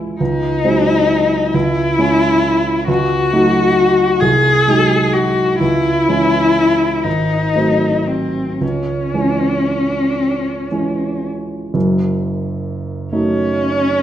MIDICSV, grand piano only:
0, 0, Header, 1, 2, 480
1, 0, Start_track
1, 0, Key_signature, 4, "minor"
1, 0, Tempo, 891530
1, 108, Time_signature, 6, 3, 24, 8
1, 2030, Tempo, 917431
1, 2990, Tempo, 952381
1, 3470, Tempo, 1006711
1, 3950, Tempo, 1063830
1, 4910, Tempo, 1029160
1, 5870, Tempo, 902256
1, 7080, End_track
2, 0, Start_track
2, 0, Title_t, "Grand piano"
2, 0, Program_c, 0, 0
2, 0, Control_c, 0, 64, 127
2, 0, Note_on_c, 0, 52, 34
2, 0, Note_on_c, 0, 56, 34
2, 0, Note_on_c, 0, 64, 35
2, 87, Note_off_c, 0, 52, 0
2, 88, Note_off_c, 0, 56, 0
2, 89, Note_off_c, 0, 64, 0
2, 109, Note_on_c, 0, 37, 43
2, 115, Control_c, 0, 64, 0
2, 215, Control_c, 0, 64, 127
2, 339, Note_off_c, 0, 37, 0
2, 346, Note_on_c, 0, 54, 35
2, 348, Note_on_c, 0, 56, 38
2, 348, Note_on_c, 0, 60, 38
2, 808, Note_off_c, 0, 54, 0
2, 810, Note_off_c, 0, 56, 0
2, 810, Note_off_c, 0, 60, 0
2, 828, Note_on_c, 0, 37, 39
2, 838, Control_c, 0, 64, 0
2, 924, Control_c, 0, 64, 127
2, 1062, Note_off_c, 0, 37, 0
2, 1069, Note_on_c, 0, 56, 34
2, 1072, Note_on_c, 0, 61, 38
2, 1528, Note_off_c, 0, 56, 0
2, 1530, Note_off_c, 0, 61, 0
2, 1549, Note_on_c, 0, 37, 43
2, 1559, Control_c, 0, 64, 0
2, 1631, Control_c, 0, 64, 127
2, 1782, Note_off_c, 0, 37, 0
2, 1793, Note_on_c, 0, 57, 36
2, 1795, Note_on_c, 0, 54, 35
2, 1796, Note_on_c, 0, 63, 38
2, 2244, Note_off_c, 0, 57, 0
2, 2245, Note_off_c, 0, 54, 0
2, 2246, Note_off_c, 0, 63, 0
2, 2265, Note_on_c, 0, 36, 38
2, 2273, Control_c, 0, 64, 0
2, 2366, Control_c, 0, 64, 127
2, 2495, Note_off_c, 0, 36, 0
2, 2505, Note_on_c, 0, 54, 34
2, 2505, Note_on_c, 0, 56, 33
2, 2509, Note_on_c, 0, 63, 37
2, 2970, Note_off_c, 0, 54, 0
2, 2970, Note_off_c, 0, 56, 0
2, 2972, Note_off_c, 0, 63, 0
2, 2990, Note_on_c, 0, 37, 41
2, 2999, Control_c, 0, 64, 0
2, 3080, Control_c, 0, 64, 127
2, 3220, Note_off_c, 0, 37, 0
2, 3229, Note_on_c, 0, 52, 32
2, 3232, Note_on_c, 0, 56, 31
2, 3234, Note_on_c, 0, 61, 35
2, 3688, Note_off_c, 0, 52, 0
2, 3689, Note_off_c, 0, 56, 0
2, 3690, Note_off_c, 0, 61, 0
2, 3699, Note_on_c, 0, 32, 34
2, 3716, Control_c, 0, 64, 0
2, 3812, Control_c, 0, 64, 127
2, 3938, Note_off_c, 0, 32, 0
2, 3945, Note_on_c, 0, 54, 28
2, 3946, Note_on_c, 0, 57, 28
2, 3950, Note_on_c, 0, 60, 31
2, 4406, Note_off_c, 0, 54, 0
2, 4406, Note_off_c, 0, 57, 0
2, 4408, Note_off_c, 0, 60, 0
2, 4422, Note_on_c, 0, 37, 35
2, 4434, Control_c, 0, 64, 0
2, 4509, Control_c, 0, 64, 127
2, 4660, Note_off_c, 0, 37, 0
2, 4661, Note_on_c, 0, 52, 27
2, 4661, Note_on_c, 0, 56, 28
2, 4663, Note_on_c, 0, 61, 30
2, 5364, Note_off_c, 0, 52, 0
2, 5364, Note_off_c, 0, 56, 0
2, 5365, Note_off_c, 0, 61, 0
2, 5385, Note_on_c, 0, 52, 25
2, 5387, Note_on_c, 0, 56, 24
2, 5388, Note_on_c, 0, 61, 27
2, 5849, Note_off_c, 0, 52, 0
2, 5850, Note_off_c, 0, 56, 0
2, 5851, Note_off_c, 0, 61, 0
2, 5865, Note_on_c, 0, 30, 39
2, 5865, Note_on_c, 0, 42, 45
2, 5880, Control_c, 0, 64, 0
2, 5983, Control_c, 0, 64, 127
2, 6599, Note_on_c, 0, 54, 33
2, 6601, Note_on_c, 0, 57, 29
2, 6604, Note_on_c, 0, 63, 34
2, 7080, Note_off_c, 0, 30, 0
2, 7080, Note_off_c, 0, 42, 0
2, 7080, Note_off_c, 0, 54, 0
2, 7080, Note_off_c, 0, 57, 0
2, 7080, Note_off_c, 0, 63, 0
2, 7080, End_track
0, 0, End_of_file